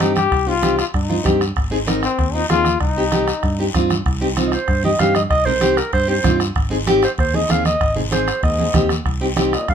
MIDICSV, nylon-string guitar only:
0, 0, Header, 1, 2, 480
1, 0, Start_track
1, 0, Key_signature, -3, "minor"
1, 0, Tempo, 312175
1, 483, Time_signature, 4, 2, 24, 8
1, 14978, End_track
2, 0, Start_track
2, 0, Title_t, "Nylon-string guitar"
2, 0, Program_c, 0, 24
2, 0, Note_on_c, 0, 60, 65
2, 0, Note_on_c, 0, 63, 63
2, 7, Note_on_c, 0, 67, 75
2, 249, Note_off_c, 0, 60, 0
2, 251, Note_off_c, 0, 63, 0
2, 257, Note_off_c, 0, 67, 0
2, 713, Note_on_c, 0, 60, 63
2, 720, Note_on_c, 0, 63, 59
2, 732, Note_on_c, 0, 67, 61
2, 802, Note_off_c, 0, 60, 0
2, 807, Note_off_c, 0, 63, 0
2, 810, Note_off_c, 0, 67, 0
2, 951, Note_on_c, 0, 60, 69
2, 958, Note_on_c, 0, 63, 65
2, 972, Note_on_c, 0, 67, 74
2, 1209, Note_off_c, 0, 60, 0
2, 1214, Note_off_c, 0, 63, 0
2, 1216, Note_off_c, 0, 67, 0
2, 1677, Note_on_c, 0, 60, 57
2, 1686, Note_on_c, 0, 63, 52
2, 1687, Note_on_c, 0, 65, 72
2, 1765, Note_off_c, 0, 60, 0
2, 1766, Note_off_c, 0, 63, 0
2, 1769, Note_off_c, 0, 65, 0
2, 1903, Note_on_c, 0, 60, 66
2, 1909, Note_on_c, 0, 63, 62
2, 1919, Note_on_c, 0, 67, 76
2, 2165, Note_off_c, 0, 60, 0
2, 2168, Note_off_c, 0, 63, 0
2, 2173, Note_off_c, 0, 67, 0
2, 2628, Note_on_c, 0, 60, 69
2, 2634, Note_on_c, 0, 63, 70
2, 2642, Note_on_c, 0, 68, 81
2, 2719, Note_off_c, 0, 60, 0
2, 2722, Note_off_c, 0, 63, 0
2, 2726, Note_off_c, 0, 68, 0
2, 2868, Note_on_c, 0, 60, 82
2, 2877, Note_on_c, 0, 63, 82
2, 2882, Note_on_c, 0, 70, 93
2, 3127, Note_off_c, 0, 60, 0
2, 3132, Note_off_c, 0, 70, 0
2, 3133, Note_off_c, 0, 63, 0
2, 3600, Note_on_c, 0, 60, 63
2, 3605, Note_on_c, 0, 63, 54
2, 3610, Note_on_c, 0, 65, 70
2, 3686, Note_off_c, 0, 60, 0
2, 3687, Note_off_c, 0, 63, 0
2, 3690, Note_off_c, 0, 65, 0
2, 3827, Note_on_c, 0, 60, 73
2, 3835, Note_on_c, 0, 63, 65
2, 3844, Note_on_c, 0, 68, 74
2, 4087, Note_off_c, 0, 60, 0
2, 4091, Note_off_c, 0, 63, 0
2, 4094, Note_off_c, 0, 68, 0
2, 4566, Note_on_c, 0, 60, 62
2, 4575, Note_on_c, 0, 63, 56
2, 4578, Note_on_c, 0, 67, 67
2, 4648, Note_off_c, 0, 60, 0
2, 4653, Note_off_c, 0, 63, 0
2, 4654, Note_off_c, 0, 67, 0
2, 4797, Note_on_c, 0, 60, 73
2, 4803, Note_on_c, 0, 63, 65
2, 4810, Note_on_c, 0, 67, 83
2, 5051, Note_off_c, 0, 60, 0
2, 5055, Note_off_c, 0, 63, 0
2, 5056, Note_off_c, 0, 67, 0
2, 5515, Note_on_c, 0, 60, 73
2, 5527, Note_on_c, 0, 63, 65
2, 5534, Note_on_c, 0, 67, 80
2, 5602, Note_off_c, 0, 60, 0
2, 5609, Note_off_c, 0, 63, 0
2, 5611, Note_off_c, 0, 67, 0
2, 5760, Note_on_c, 0, 60, 80
2, 5766, Note_on_c, 0, 63, 81
2, 5774, Note_on_c, 0, 65, 91
2, 6012, Note_off_c, 0, 60, 0
2, 6014, Note_off_c, 0, 63, 0
2, 6019, Note_off_c, 0, 65, 0
2, 6472, Note_on_c, 0, 60, 77
2, 6481, Note_on_c, 0, 63, 67
2, 6483, Note_on_c, 0, 67, 80
2, 6561, Note_off_c, 0, 60, 0
2, 6563, Note_off_c, 0, 63, 0
2, 6566, Note_off_c, 0, 67, 0
2, 6720, Note_on_c, 0, 60, 90
2, 6726, Note_on_c, 0, 63, 78
2, 6732, Note_on_c, 0, 65, 98
2, 6972, Note_off_c, 0, 60, 0
2, 6974, Note_off_c, 0, 63, 0
2, 6978, Note_off_c, 0, 65, 0
2, 7428, Note_on_c, 0, 60, 62
2, 7440, Note_on_c, 0, 63, 60
2, 7448, Note_on_c, 0, 67, 72
2, 7518, Note_off_c, 0, 60, 0
2, 7524, Note_off_c, 0, 63, 0
2, 7528, Note_off_c, 0, 67, 0
2, 7674, Note_on_c, 0, 60, 67
2, 7686, Note_on_c, 0, 63, 65
2, 7693, Note_on_c, 0, 67, 82
2, 7929, Note_off_c, 0, 60, 0
2, 7935, Note_off_c, 0, 63, 0
2, 7938, Note_off_c, 0, 67, 0
2, 8392, Note_on_c, 0, 60, 65
2, 8397, Note_on_c, 0, 63, 55
2, 8408, Note_on_c, 0, 70, 69
2, 8480, Note_off_c, 0, 60, 0
2, 8480, Note_off_c, 0, 63, 0
2, 8487, Note_off_c, 0, 70, 0
2, 8618, Note_on_c, 0, 60, 69
2, 8627, Note_on_c, 0, 67, 81
2, 8628, Note_on_c, 0, 63, 73
2, 8881, Note_off_c, 0, 60, 0
2, 8883, Note_off_c, 0, 63, 0
2, 8885, Note_off_c, 0, 67, 0
2, 9335, Note_on_c, 0, 60, 61
2, 9344, Note_on_c, 0, 63, 58
2, 9347, Note_on_c, 0, 67, 71
2, 9432, Note_off_c, 0, 60, 0
2, 9433, Note_off_c, 0, 63, 0
2, 9437, Note_off_c, 0, 67, 0
2, 9578, Note_on_c, 0, 60, 69
2, 9587, Note_on_c, 0, 63, 66
2, 9596, Note_on_c, 0, 65, 78
2, 9840, Note_off_c, 0, 60, 0
2, 9845, Note_off_c, 0, 63, 0
2, 9848, Note_off_c, 0, 65, 0
2, 10305, Note_on_c, 0, 60, 73
2, 10313, Note_on_c, 0, 63, 73
2, 10322, Note_on_c, 0, 68, 84
2, 10396, Note_off_c, 0, 60, 0
2, 10400, Note_off_c, 0, 63, 0
2, 10402, Note_off_c, 0, 68, 0
2, 10553, Note_on_c, 0, 60, 86
2, 10563, Note_on_c, 0, 63, 82
2, 10573, Note_on_c, 0, 67, 101
2, 10810, Note_off_c, 0, 60, 0
2, 10812, Note_off_c, 0, 63, 0
2, 10813, Note_off_c, 0, 67, 0
2, 11276, Note_on_c, 0, 60, 63
2, 11286, Note_on_c, 0, 63, 60
2, 11289, Note_on_c, 0, 68, 75
2, 11362, Note_off_c, 0, 60, 0
2, 11365, Note_off_c, 0, 63, 0
2, 11368, Note_off_c, 0, 68, 0
2, 11514, Note_on_c, 0, 60, 74
2, 11520, Note_on_c, 0, 63, 64
2, 11526, Note_on_c, 0, 68, 84
2, 11769, Note_off_c, 0, 60, 0
2, 11770, Note_off_c, 0, 63, 0
2, 11775, Note_off_c, 0, 68, 0
2, 12230, Note_on_c, 0, 60, 59
2, 12240, Note_on_c, 0, 63, 61
2, 12242, Note_on_c, 0, 68, 67
2, 12320, Note_off_c, 0, 60, 0
2, 12321, Note_off_c, 0, 63, 0
2, 12325, Note_off_c, 0, 68, 0
2, 12471, Note_on_c, 0, 60, 73
2, 12483, Note_on_c, 0, 63, 65
2, 12483, Note_on_c, 0, 68, 87
2, 12729, Note_off_c, 0, 60, 0
2, 12731, Note_off_c, 0, 63, 0
2, 12734, Note_off_c, 0, 68, 0
2, 13192, Note_on_c, 0, 60, 60
2, 13200, Note_on_c, 0, 63, 57
2, 13206, Note_on_c, 0, 68, 70
2, 13281, Note_off_c, 0, 60, 0
2, 13285, Note_off_c, 0, 63, 0
2, 13286, Note_off_c, 0, 68, 0
2, 13432, Note_on_c, 0, 60, 78
2, 13436, Note_on_c, 0, 63, 68
2, 13448, Note_on_c, 0, 67, 78
2, 13689, Note_off_c, 0, 60, 0
2, 13692, Note_off_c, 0, 63, 0
2, 13695, Note_off_c, 0, 67, 0
2, 14160, Note_on_c, 0, 60, 73
2, 14166, Note_on_c, 0, 63, 62
2, 14170, Note_on_c, 0, 67, 77
2, 14246, Note_off_c, 0, 60, 0
2, 14249, Note_off_c, 0, 63, 0
2, 14249, Note_off_c, 0, 67, 0
2, 14396, Note_on_c, 0, 60, 85
2, 14402, Note_on_c, 0, 63, 82
2, 14408, Note_on_c, 0, 67, 97
2, 14652, Note_off_c, 0, 60, 0
2, 14656, Note_off_c, 0, 63, 0
2, 14657, Note_off_c, 0, 67, 0
2, 14978, End_track
0, 0, End_of_file